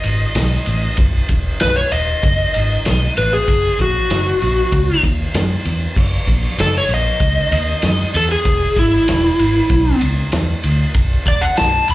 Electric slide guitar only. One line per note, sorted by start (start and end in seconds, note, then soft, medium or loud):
0.00 0.95 D#5 medium
1.62 1.76 B4 medium
1.76 1.91 C#5 medium
1.92 3.13 D#5 medium
3.18 3.32 B4 medium
3.33 3.78 G#4 medium
3.81 5.01 F#4 loud
6.61 6.75 A4 medium
6.78 6.91 C#5 medium
6.94 8.13 D#5 medium
8.16 8.31 A4 loud
8.32 8.76 G#4 medium
8.79 9.99 E4 loud
11.28 11.42 D5 loud
11.41 11.57 F#5 medium
11.57 11.87 A5 medium
11.91 11.95 B5 medium